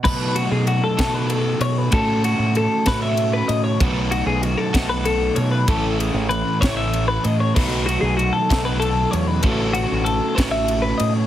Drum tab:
CC |x-----|------|------|------|
RD |-xxxxx|xxxxxx|xxxxxx|xxxxxx|
SD |---o--|---o--|---o--|---o--|
BD |o--o--|o--o--|o--o--|o--o--|

CC |x-----|------|
RD |-xxxxx|xxxxxx|
SD |---o--|---o--|
BD |o--o--|o--o--|